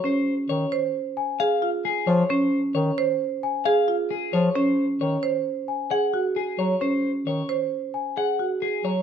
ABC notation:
X:1
M:5/4
L:1/8
Q:1/4=133
K:Db
V:1 name="Celesta"
z4 z a z4 | z4 z a z4 | z4 z a z4 | z4 z a z4 |]
V:2 name="Clean electric guitar"
c z d z3 f z A d | c z d z3 f z A d | c z d z3 g z A d | c z d z3 g z A d |]
V:3 name="Marimba"
D z2 c z2 A F z2 | D z2 c z2 A F z2 | D z2 c z2 A G z2 | D z2 c z2 A G z2 |]
V:4 name="Bass clarinet" clef=bass
z2 E, z6 F, | z2 E, z6 F, | z2 E, z6 G, | z2 E, z6 G, |]